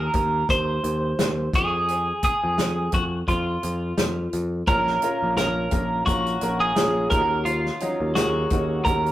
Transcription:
Already playing: A#4
0.14 D#2, kick, closed hi-hat
0.49 D#2 C5, kick, closed hi-hat
0.84 D#2, closed hi-hat
1.19 D#2, snare, closed hi-hat
1.53 F2 G#4, kick, closed hi-hat
1.88 closed hi-hat
2.23 G#4, kick, closed hi-hat
2.44 F2
2.58 F2, snare, closed hi-hat
2.92 F2 F#4, kick, closed hi-hat
3.28 F2 F4, kick, closed hi-hat
3.63 F2, closed hi-hat
3.98 F2, snare, closed hi-hat
4.33 F2, closed hi-hat
4.67 A#1 A#2 C#4 F4 A#4, kick, closed hi-hat
4.87 snare
5.02 C#4 F4 A#4, closed hi-hat
5.22 A#1
5.37 A#1 C#4 F4 A#4, snare, closed hi-hat
5.71 A#1 C#4 F4 A#4, kick, closed hi-hat
6.06 A#1 C#4 F#4 A#4 F5, kick, closed hi-hat
6.26 closed hi-hat
6.41 A#1 C#4 F4 A#4, closed hi-hat
6.60 G#4
6.76 A#1 C#4 F4 G#4, snare, closed hi-hat
7.10 D#2 D#3 C#4 D#4 F4 A#4, kick, closed hi-hat
7.20 F#4
7.45 F4, closed hi-hat
7.66 snare
7.80 F#3 C#4 D#4, closed hi-hat
8.00 D#2
8.15 D#2 C#4 D#4 F#4 G#4, snare, closed hi-hat
8.50 D#2 C#4 D#4 F#4, kick, closed hi-hat
8.85 D#2 C#4 D#4 F#4 A#4, kick, closed hi-hat
9.06 closed hi-hat

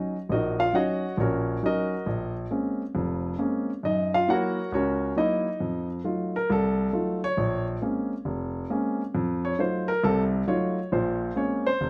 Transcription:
Already playing: F#3 C#4 D#4
0.29 A#1 D#4 F#4 A#4 D#5
0.60 F4 F5
0.73 F#3 C#4 D#4 F#4 C#5 D#5 F#5
1.17 A#1 C#4 F#4 A#4 C#5
1.62 F#3 C#4 D#4 F#4 A#4 D#5
2.06 A#1
2.51 G#3 A#3 C4 C#4
2.95 F1 F2
3.38 G#3 A#3 C4 C#4
3.83 F#2 D#4 D#5
4.14 F4 F5
4.28 F#3 A#3 E4 F#4 A#4 C#5 F#5
4.72 C#2 C#4 F#4 A#4 C#5
5.16 F#3 A#3 D#4 E4 D#5
5.60 F2
6.04 F#3 A3 D#4 F4
6.36 A#4
6.50 C2 A4
6.93 F#3 A3 D#4 F4
7.24 C#5
7.37 A#1
7.82 G#3 A#3 C4 C#4
8.25 F1
8.70 G#3 A#3 C4 C#4
9.15 F2
9.45 C#5
9.59 F#3 A3 D#4 F4 C5
9.88 A#4
10.03 C2 C3 A4
10.47 F#3 A3 D#4 F4 C#5
10.92 A#1 A#2 C5
11.35 G#3 A#3 C4 C#4 C#5
11.67 C5
11.81 F1

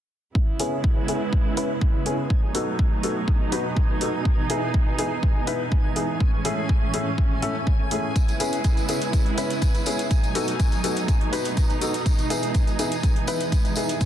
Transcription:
0.35 C#3 G#3 B3 E4 G#5 G#6, kick
0.60 B3 C#4 E4 G#4, open hi-hat
0.84 kick
1.08 B3 C#4 E4 G#4, open hi-hat
1.33 kick
1.57 B3 C#4 E4 B4, open hi-hat
1.81 kick
2.06 B3 C#4 E4 G#4, open hi-hat
2.30 B2 F#3 A3 D#4, kick
2.55 B3 D#4 F#4 A4, open hi-hat
2.79 kick
3.03 B3 D#4 F#4 A4, open hi-hat
3.28 kick
3.52 B3 D#4 F#4 B4, open hi-hat
3.77 kick
4.01 B3 D#4 F#4 A4, open hi-hat
4.25 E3 G#3, kick
4.50 B3 D#4 E4 G#4, open hi-hat
4.74 kick
4.98 B3 D#4 E4 G#4, open hi-hat
5.23 kick
5.47 B3 D#4 E4 B4, open hi-hat
5.72 kick
5.96 B3 D#4 E4 G#4, open hi-hat
6.20 A2 C#4, kick
6.45 A3 C#4 E4 G#4, open hi-hat
6.69 kick
6.94 A3 C#4 E4 G#4, open hi-hat
7.18 kick
7.42 A3 C#4 E4 A4, open hi-hat
7.67 kick
7.91 A3 C#4 E4 G#4, open hi-hat
8.16 C#3 G#3 B3 E4, kick, closed hi-hat, tambourine
8.28 closed hi-hat, tambourine
8.40 B3 C#4 E4 G#4, open hi-hat, tambourine
8.53 closed hi-hat, tambourine
8.64 kick, closed hi-hat, tambourine
8.77 closed hi-hat, tambourine
8.89 B3 C#4 E4 G#4, open hi-hat, tambourine
9.02 closed hi-hat, tambourine
9.13 kick, closed hi-hat, tambourine
9.26 closed hi-hat
9.38 B3 C#4 E4 B4, open hi-hat, tambourine
9.50 closed hi-hat, tambourine
9.62 kick, closed hi-hat, tambourine
9.74 closed hi-hat, tambourine
9.86 B3 C#4 E4 G#4, open hi-hat, tambourine
9.99 closed hi-hat, tambourine
10.11 B2 F#3 A3 D#4, kick, closed hi-hat, tambourine
10.24 closed hi-hat, tambourine
10.35 B3 D#4 F#4 A4, open hi-hat, tambourine
10.47 closed hi-hat, tambourine
10.60 kick, closed hi-hat, tambourine
10.72 closed hi-hat, tambourine
10.84 B3 D#4 F#4 A4, open hi-hat, tambourine
10.96 closed hi-hat, tambourine
11.08 kick, closed hi-hat, tambourine
11.21 closed hi-hat
11.33 B3 D#4 F#4 B4, open hi-hat, tambourine
11.45 closed hi-hat, tambourine
11.57 kick, closed hi-hat, tambourine
11.70 closed hi-hat, tambourine
11.81 B3 D#4 F#4 A4, open hi-hat, tambourine
11.94 closed hi-hat, tambourine
12.06 E3 G#3, kick, closed hi-hat, tambourine
12.19 closed hi-hat, tambourine
12.30 B3 D#4 E4 G#4, open hi-hat, tambourine
12.42 closed hi-hat, tambourine
12.54 kick, closed hi-hat, tambourine
12.67 closed hi-hat, tambourine
12.79 B3 D#4 E4 G#4, open hi-hat, tambourine
12.92 closed hi-hat, tambourine
13.03 kick, closed hi-hat, tambourine
13.16 closed hi-hat
13.27 B3 D#4 E4 B4, open hi-hat, tambourine
13.41 closed hi-hat, tambourine
13.52 kick, closed hi-hat, tambourine
13.65 closed hi-hat, tambourine
13.76 B3 D#4 E4 G#4, open hi-hat, tambourine
13.89 closed hi-hat, tambourine
14.01 A2 C#4, kick, closed hi-hat, tambourine

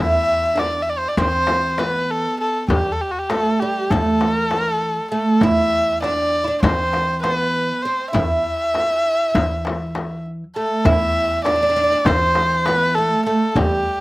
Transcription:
Already playing: E2 E4
0.01 E5
0.56 D4 D5, darbuka tek, frame drum
0.72 darbuka ka
0.82 E5
0.88 D5, darbuka ka
0.98 C5
1.08 D5
1.17 E3 C4 C5, frame drum, darbuka dum
1.47 darbuka tek, frame drum
1.78 B3 B4, darbuka tek, frame drum
2.09 A4, darbuka ka
2.40 A4, darbuka ka
2.68 E2 G3 G4, darbuka dum, frame drum
2.92 A4
3.01 G4
3.11 F#4
3.19 G4
3.30 A3 A4, darbuka tek, frame drum
3.46 darbuka ka
3.59 G3 G4, darbuka ka
3.90 E3 A3 A4, frame drum, darbuka dum
4.21 darbuka tek, frame drum
4.33 A#4
4.45 A4
4.51 darbuka tek, frame drum
4.57 A#4
4.69 A4
4.82 darbuka ka
5.11 A3 A4, darbuka ka
5.41 E2 E4 E5, frame drum, darbuka dum
6.02 D4 D5, darbuka tek, frame drum
6.18 darbuka ka
6.32 darbuka ka
6.44 D4 E4
6.63 E3 C4 C5, darbuka dum, frame drum
6.93 darbuka tek, frame drum
7.23 B3 B4, darbuka tek, frame drum
7.55 darbuka ka
7.82 C4 C5, darbuka ka
8.11 E2 E4 E5, darbuka dum, frame drum
8.74 darbuka tek, frame drum
8.91 darbuka ka
9.06 darbuka ka
9.35 E3, darbuka dum, frame drum
9.65 darbuka tek, frame drum
9.95 darbuka tek, frame drum
10.26 darbuka ka
10.56 A3 A4
10.85 E2 E4 E5, frame drum, darbuka dum
11.45 D4 D5, darbuka tek, frame drum
11.56 D4
11.63 D4
11.70 D4
11.75 D4, darbuka ka
11.84 D4
11.92 D4
12.05 E3 C4 C5, darbuka dum, frame drum
12.35 darbuka tek, frame drum
12.65 B3 B4, darbuka tek, frame drum
12.95 A3 A4, darbuka ka
13.26 A3 A4, darbuka ka
13.55 E2 G3 G4, frame drum, darbuka dum

